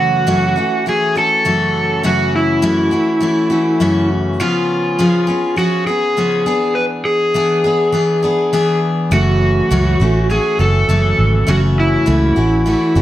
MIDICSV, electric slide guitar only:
0, 0, Header, 1, 2, 480
1, 0, Start_track
1, 0, Key_signature, 3, "minor"
1, 0, Tempo, 589971
1, 1664, Time_signature, 4, 2, 24, 8
1, 10591, End_track
2, 0, Start_track
2, 0, Title_t, "Electric slide guitar"
2, 0, Program_c, 0, 29
2, 0, Note_on_c, 0, 66, 76
2, 721, Note_off_c, 0, 66, 0
2, 724, Note_on_c, 0, 68, 77
2, 959, Note_off_c, 0, 68, 0
2, 962, Note_on_c, 0, 69, 81
2, 1640, Note_off_c, 0, 69, 0
2, 1678, Note_on_c, 0, 66, 74
2, 1895, Note_off_c, 0, 66, 0
2, 1917, Note_on_c, 0, 64, 72
2, 3317, Note_off_c, 0, 64, 0
2, 3591, Note_on_c, 0, 65, 77
2, 4538, Note_off_c, 0, 65, 0
2, 4541, Note_on_c, 0, 66, 75
2, 4773, Note_off_c, 0, 66, 0
2, 4776, Note_on_c, 0, 68, 77
2, 5493, Note_on_c, 0, 71, 94
2, 5521, Note_off_c, 0, 68, 0
2, 5559, Note_off_c, 0, 71, 0
2, 5739, Note_on_c, 0, 68, 85
2, 7148, Note_off_c, 0, 68, 0
2, 7430, Note_on_c, 0, 66, 81
2, 8354, Note_off_c, 0, 66, 0
2, 8390, Note_on_c, 0, 68, 83
2, 8628, Note_off_c, 0, 68, 0
2, 8631, Note_on_c, 0, 69, 85
2, 9359, Note_on_c, 0, 66, 86
2, 9368, Note_off_c, 0, 69, 0
2, 9422, Note_off_c, 0, 66, 0
2, 9598, Note_on_c, 0, 64, 73
2, 10591, Note_off_c, 0, 64, 0
2, 10591, End_track
0, 0, End_of_file